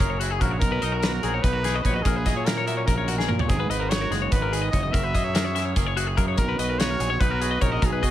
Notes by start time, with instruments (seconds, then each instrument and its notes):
Already playing: clean electric guitar F#3 C#4 E4, trumpet A#4
0.00 fingered electric bass F#1, clean electric guitar G#4, kick
0.10 clean electric guitar C#5
0.19 clean electric guitar E4 F#4, trumpet G#4, closed hi-hat
0.31 clean electric guitar G#4
0.40 fingered electric bass A#1, clean electric guitar C#3 E4 A#4, trumpet F#4, kick, closed hi-hat
0.51 clean electric guitar C#5
0.59 fingered electric bass B1, clean electric guitar B2 A#4, trumpet A#4, kick, closed hi-hat
0.72 clean electric guitar B4
0.82 fingered electric bass B1, clean electric guitar D#4 D#5, closed hi-hat
0.92 clean electric guitar F#4 A#4
0.99 trumpet A#4, closed hi-hat
1.03 clean electric guitar F#4 B4, snare
1.13 clean electric guitar A#4
1.23 fingered electric bass A#1, clean electric guitar F#3 D#4 G#4, closed hi-hat
1.34 clean electric guitar C#5
1.42 fingered electric bass B1, clean electric guitar D#4 B4, trumpet B4, kick, closed hi-hat
1.53 clean electric guitar F#4 A#4
1.63 clean electric guitar D#4 G#4, snare, closed hi-hat
1.74 clean electric guitar F#4 D#5
1.82 fingered electric bass A#1, clean electric guitar B2 D#4 C#5, trumpet B4, kick, closed hi-hat
1.93 clean electric guitar F#4 D#5
2.02 fingered electric bass A#1, clean electric guitar A#2, trumpet G#4, kick, closed hi-hat
2.07 clean electric guitar A#4
2.16 clean electric guitar B4
2.26 fingered electric bass A#2, clean electric guitar E4 D#5, kick, snare, closed hi-hat
2.37 clean electric guitar C#5
2.46 clean electric guitar E4 A#4, trumpet A#4, snare, closed hi-hat
2.57 clean electric guitar C#5
2.67 clean electric guitar F#3 B3 E5, closed hi-hat
2.77 clean electric guitar C#4 C#5
2.85 fingered electric bass A#1, clean electric guitar C#3 A#4, trumpet A#4, kick, closed hi-hat
2.98 clean electric guitar C#5
3.08 clean electric guitar B2 F#4, closed hi-hat
3.18 clean electric guitar G#4, snare
3.28 fingered electric bass A#2, clean electric guitar A#2 A#4, mid tom
3.39 clean electric guitar C#5, floor tom
3.48 fingered electric bass G#1, clean electric guitar G#2 A#4, trumpet G#4, kick, closed hi-hat
3.60 clean electric guitar B4
3.69 fingered electric bass G#1, clean electric guitar D#4 D#5, trumpet B4, closed hi-hat
3.80 clean electric guitar F#4 A#4
3.89 clean electric guitar D#4 B4, trumpet C#5, snare, closed hi-hat
4.01 clean electric guitar F#4 A#4
4.10 fingered electric bass F#1, clean electric guitar G#3 B3 G#4, snare, closed hi-hat
4.22 clean electric guitar C#5
4.31 fingered electric bass G#1, clean electric guitar C#3 B4, trumpet B4, kick, closed hi-hat
4.42 clean electric guitar A#4
4.52 clean electric guitar D#3 G#4, closed hi-hat
4.62 clean electric guitar D#5
4.71 fingered electric bass F#1, clean electric guitar E3 C#5, trumpet D#5, kick, closed hi-hat
4.83 clean electric guitar D#5
4.92 fingered electric bass F#1, clean electric guitar F#3 A#4, trumpet E5, kick, closed hi-hat
5.04 clean electric guitar B4
5.15 fingered electric bass F#2, clean electric guitar G#4 D#5, kick, closed hi-hat
5.24 clean electric guitar C#5
5.34 clean electric guitar G#4 A#4, snare, closed hi-hat
5.45 clean electric guitar C#5
5.55 clean electric guitar C#4 E4 E5, snare, closed hi-hat
5.65 clean electric guitar C#5
5.76 fingered electric bass F#1, clean electric guitar G#4 A#4, kick, closed hi-hat
5.87 clean electric guitar C#5
5.97 clean electric guitar F#4 G#4, closed hi-hat
6.07 clean electric guitar G#4
6.17 fingered electric bass F#2, clean electric guitar C#3 G#4 A#4, kick, closed hi-hat
6.28 clean electric guitar C#5
6.37 fingered electric bass B1, clean electric guitar B2 A#4, trumpet A#4, kick, closed hi-hat
6.49 clean electric guitar B4
6.58 fingered electric bass B1, clean electric guitar F#4 D#5, trumpet B4, closed hi-hat
6.69 clean electric guitar A#4
6.79 clean electric guitar F#4 B4, trumpet C#5, snare, closed hi-hat
6.90 clean electric guitar A#4
6.99 fingered electric bass A#1, clean electric guitar F#3 D#4 G#4, closed hi-hat
7.10 clean electric guitar C#5
7.20 fingered electric bass B1, clean electric guitar D#4 B4, trumpet B4, kick, closed hi-hat
7.30 clean electric guitar F#4 A#4
7.41 clean electric guitar F#4 G#4, closed hi-hat
7.51 clean electric guitar D#5
7.61 fingered electric bass A#1, clean electric guitar B2 D#4 C#5, trumpet A#4, kick, closed hi-hat
7.72 clean electric guitar F#4 D#5
7.82 fingered electric bass B1, clean electric guitar B2 A#4, trumpet G#4, kick, closed hi-hat
7.92 clean electric guitar B4
8.02 fingered electric bass B2, clean electric guitar F#4 D#5, kick, closed hi-hat